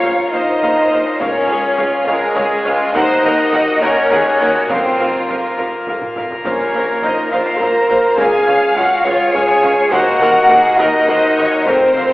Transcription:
Already playing: A#2 C#4 F4 A#4 C#5 F5
0.03 A#1 A#2 C5 F5, taiko
0.31 A#1 A#2 D#4 C5 D#5 F5
0.61 A#1 A#2 C5 F5, taiko
0.77 taiko rim
0.90 A#1 A#2 C5 F5
1.06 taiko rim
1.19 C#2 C#4 G#4 A#4 C#5 F5, taiko
1.35 taiko low-mid
1.48 C#2 G#4 C#5 F5
1.78 C#2 F4 C#5 F5, taiko
2.05 C#2 G#3 G#4 A#4 C#5 F5
2.22 taiko rim
2.36 C#2 G#4 C#5 F5, taiko
2.66 C#2 F4 C#5 F5
2.94 D#2 A#3 D#4 A#4 C5 D#5 F#5, taiko
3.09 taiko low-mid
3.23 D#2 A#4 F#5
3.38 taiko rim
3.52 D#2 F#4 A#4 F#5, taiko
3.81 D#2 C#4 A#4 C#5 F#5
4.10 D#2 G#4 A#4 F#5, taiko
4.26 taiko rim
4.40 D#2 F#4 A#4 F#5
4.55 taiko rim
4.68 F1 F2 A#3 C4 F4 A#4 C5 F5, taiko
4.85 taiko low-mid
4.98 F1 F2 A#4 F5
5.28 F1 F2 A#4 F5, taiko
5.57 F1 F2 A#4 F5
5.86 F1 F2 A#4 F5, taiko
6.02 taiko low-mid
6.16 F1 F2 A#4 F5, taiko low-mid
6.31 taiko low
6.44 A#1 A#2 C#4 A#4 C5 C#5 F5, taiko
6.60 taiko low-mid
6.73 A#1 A#2 C5 F5
7.02 A#1 A#2 D#4 C5 D#5 F5, taiko
7.30 A#1 A#2 F4 C5 F5
7.46 taiko rim
7.59 A#1 A#2 A#4 C5 F5 A#5, taiko
7.89 A#1 A#2 C5 F5
8.17 C#2 C#4 G#4 C#5 F5 G#5, taiko
8.33 taiko low-mid
8.46 C#2 C#5 F5
8.75 C#2 F#4 C#5 F5 F#5, taiko
9.04 C#2 F4 C#5 F5
9.33 C#2 G#4 C#5 F5 G#5, taiko
9.48 taiko rim
9.62 C#2 C#5 F5
9.91 D#2 A#3 F#4 A#4 C5 D#5 F#5, taiko
10.06 taiko low-mid
10.19 D#2 A#4 F#5
10.48 D#2 G#4 A#4 F#5, taiko
10.78 D#2 D#4 A#4 D#5 F#5
10.94 taiko rim
11.07 D#2 A#4 C5 F#5, taiko
11.36 D#2 A#4 C#5 F#5
11.52 taiko rim
11.65 F1 F2 C4 F4 A#4 C5 F5, taiko
11.74 F2
11.81 F2, taiko low-mid
11.89 F2
11.95 F1 F2 A#4 F5
12.03 F2

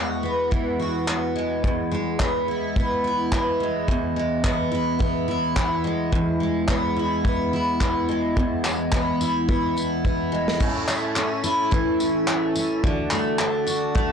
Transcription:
Already playing: E2 E3 G#3 B3 F#4
0.23 B3
0.51 E3, kick
0.79 F#4
1.08 B3, clap
1.36 G#3
1.64 E2, kick
1.91 G#3
2.20 B3, kick, clap
2.48 E4
2.76 B3, kick
3.04 E4
3.32 B3, kick, clap
3.60 G#3
3.88 E2, kick
4.16 G#3
4.44 B3, kick, clap
4.71 E4
4.99 B3, kick
5.28 E4
5.56 B3, kick, clap
5.84 G#3
6.12 E2, kick
6.40 G#3
6.68 B3, kick, clap
6.96 E4
7.25 B3, kick
7.53 E4
7.81 B3, kick, clap
8.09 G#3
8.37 E2, kick
8.65 G#3, clap, tambourine
8.92 B3, kick, clap
9.21 E4, tambourine
9.48 B3, kick
9.76 E4, tambourine
10.05 B3, kick
10.32 G#3
10.48 snare
10.60 A2 C#4 E4 A4, kick, crash
10.88 A3, clap, tambourine
11.16 C#4, clap
11.44 E4, tambourine
11.71 E3, kick
12.00 C#4, tambourine
12.28 A3, clap
12.56 C#4, tambourine
12.83 D3 D4 F#4 A4, kick
13.11 A3, clap, tambourine
13.39 D4, clap
13.66 F#4, tambourine
13.95 A3, kick

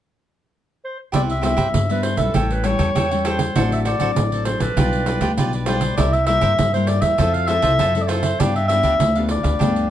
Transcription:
0.85 C5
1.12 C2 C3 G3 B3 E4 G4 B4 C5 D5 E5, pandeiro
1.30 E5, pandeiro
1.42 G3 B3 E4 G4 B4 C5 E5, pandeiro
1.57 G2 G4 B4 C5 E5, pandeiro
1.74 G2, pandeiro
1.89 G3 B3 E4 B4 C5 E5, pandeiro
2.03 C5, pandeiro
2.17 B1 G3 C#4 E4 A4 B4 C5 E5, pandeiro
2.34 A1 A2 G4 A4 C#5 G5, pandeiro
2.50 B4, pandeiro
2.63 G3 C#4 E4 G4 A4 C#5 G5, pandeiro
2.79 E2 G4 A4 C#5 G5, pandeiro
2.95 E2 E3 G4 A4 C#5 G5, pandeiro
3.11 G3 C#4 E4 A4 C#5 G5, pandeiro
3.25 G4 A4 C5 C#5 G5, pandeiro
3.39 A4 C#5 G5, pandeiro
3.55 A1 A2 F#3 C4 D4 F#4 A4 C5 D5, pandeiro
3.72 E5, pandeiro
3.85 F#4 A4 C5 D5, pandeiro
3.99 A1 F#3 C4 D4 F#4 A4 C5 D5, pandeiro
4.15 A1 A2, pandeiro
4.32 A4 C5 D5, pandeiro
4.45 F#3 C4 D4 C5, pandeiro
4.60 A#1 A4 B4 C5 D5, pandeiro
4.77 B1 B2 G3 D4 F4 G4 B4 D5, pandeiro
4.93 pandeiro
5.06 F4 G4 B4 D5, pandeiro
5.20 D2 G3 D4 F4 G4 B4 D5, pandeiro
5.37 B1 B2 F4 G4 B4 D5, pandeiro
5.53 G4 B4 D5, pandeiro
5.66 G3 D4 F4 G4 B4 C5 D5, pandeiro
5.81 G4 B4 D5, pandeiro
5.97 C2 C3 G3 A#3 E4 A#4 C5 D5 E5, pandeiro
6.13 E5, pandeiro
6.26 G3 A#3 E4 A#4 C5 E5, pandeiro
6.41 G2 E4 A#4 C5 E5, pandeiro
6.58 G2, pandeiro
6.74 G3 A#3 E4 A#4 C5 E5, pandeiro
6.87 D5, pandeiro
7.01 E2 A#4 C5 E5, pandeiro
7.18 F2 F3 C4 E4 F4 A4 C5 E5, pandeiro
7.34 F5, pandeiro
7.47 C4 E4 F4 A4 C5 E5, pandeiro
7.62 C2 F4 A4 C5 E5, pandeiro
7.79 F#2 C3 F4 A4 C5 E5, pandeiro
7.95 C4 E4 A4 C5 E5, pandeiro
8.02 D5
8.08 F4 A4 C5 E5, pandeiro
8.22 A4 C5 E5, pandeiro
8.40 G2 F3 B3 D4 G4 B4 D5 F5, pandeiro
8.56 E5, pandeiro
8.68 F3 B3 D4 G4 B4 E5 F5, pandeiro
8.83 D2 D4 G4 B4 F5, pandeiro
9.00 D2 D3, pandeiro
9.15 F3 B3 D4 G4 B4 F5, pandeiro
9.29 D5, pandeiro
9.43 D2 G4 B4 F5, pandeiro
9.59 D2 G2 F3 B3 D4 G4 B4 F5, pandeiro
9.76 pandeiro

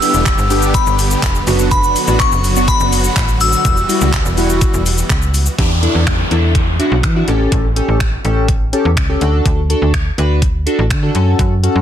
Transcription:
Already playing: D3 G3 B3 G4 E6
0.02 B3 D4 E4, open hi-hat, shaker
0.14 E1, shaker
0.26 kick, clap, closed hi-hat, shaker
0.38 G1, shaker
0.50 B3 D4 G4, open hi-hat, shaker
0.62 shaker
0.74 B5, kick, closed hi-hat, shaker
0.87 G1, shaker
0.99 open hi-hat, shaker
1.11 shaker
1.23 E1, kick, clap, closed hi-hat, shaker
1.35 shaker
1.47 F#1 F#3 B3 D4 F#4, open hi-hat, shaker
1.59 shaker
1.71 B5, kick, closed hi-hat, shaker
1.83 shaker
1.96 open hi-hat, shaker
2.07 A1 B3 D4 F#4, shaker
2.20 C#6, kick, clap, closed hi-hat, shaker
2.32 F#1, shaker
2.44 open hi-hat, shaker
2.56 B3 D4 F#4, shaker
2.68 B5, kick, closed hi-hat, shaker
2.80 F#1, shaker
2.93 open hi-hat, shaker
3.04 shaker
3.16 A1, kick, clap, closed hi-hat, shaker
3.28 shaker
3.41 E6, open hi-hat, shaker
3.53 shaker
3.65 E1 E3 G3 E4 F#4, kick, closed hi-hat, shaker
3.77 shaker
3.89 G3 E4 F#4, open hi-hat, shaker
4.01 C#2, shaker
4.13 kick, clap, closed hi-hat, shaker
4.25 E1, shaker
4.37 G3 E4 F#4, open hi-hat, shaker
4.50 shaker
4.61 kick, closed hi-hat, shaker
4.74 E1, shaker
4.86 open hi-hat, shaker
4.98 shaker
5.10 C#2, kick, clap, closed hi-hat, shaker
5.22 shaker
5.34 open hi-hat, shaker
5.46 shaker
5.58 E2 D4 E4 G4, kick, closed hi-hat, downlifter
5.82 D4 E4 A4, closed hi-hat
5.95 E2
6.07 finger snap, kick, closed hi-hat
6.31 E2 D4 E4 A4, closed hi-hat
6.55 kick, closed hi-hat
6.79 D4 E4 F#4, closed hi-hat
6.92 B1
7.03 E3, finger snap, kick, closed hi-hat
7.16 D4 E4 F#4
7.28 A1 C#4 G4 A4, closed hi-hat
7.52 A1, kick, closed hi-hat
7.76 C#4 G4 A4, closed hi-hat
7.88 A1
8.00 finger snap, kick, closed hi-hat
8.24 A1 C#4 G4 A4, closed hi-hat
8.48 kick, closed hi-hat
8.73 C#4 G4 A4, closed hi-hat
8.85 E2
8.97 C#2, finger snap, kick, closed hi-hat
9.09 C#4 G4 A4
9.21 D2 D4 F#4 A4, closed hi-hat
9.46 D2, kick, closed hi-hat
9.70 D4 F#4 A4, closed hi-hat
9.82 D2
9.94 finger snap, kick, closed hi-hat
10.18 D2 D4 F#4 B4, closed hi-hat
10.42 kick, closed hi-hat
10.66 D4 F#4 A4, closed hi-hat
10.79 A1
10.90 D3, finger snap, kick, closed hi-hat
11.03 D4 F#4 A4
11.15 F#2 C#4 F#4 A4, closed hi-hat
11.39 F#2, kick, closed hi-hat
11.63 C#4 F#4 A4, closed hi-hat
11.75 F#2

